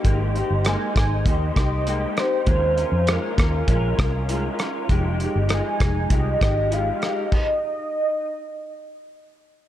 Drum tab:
CC |--------|--------|--------|x-------|
HH |xxxxxxxx|xxxxxxxx|xxxxxxxx|--------|
SD |--rr-r-r|--rr-r-r|--rr-r-r|--------|
BD |o--ooo--|o--ooo--|o--ooo--|o-------|